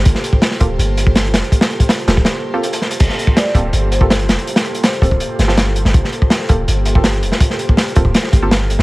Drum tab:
CC |----------------|----------------|x---------------|----------------|
HH |x-x-x-x-x-x-xxxx|xxxxxxx-x---xx-x|x-x-x-x-x-x-xxxx|xxxxxxx-x-x-x-x-|
SD |-o--oo------o-o-|-o--o-o-o-----o-|-o--oo------o-o-|-o--o-----ooo--o|
BD |o--o--o----o----|o--o---o--------|o--o--o----o----|------oo--------|

CC |----------------|----------------|
HH |x-x-x-x-x-x-xxx-|x-x-xxx-x-x-x-x-|
SD |-o--oo------o--o|-o--o---oo--o--o|
BD |o--o--o----o----|o--o--oo--o-----|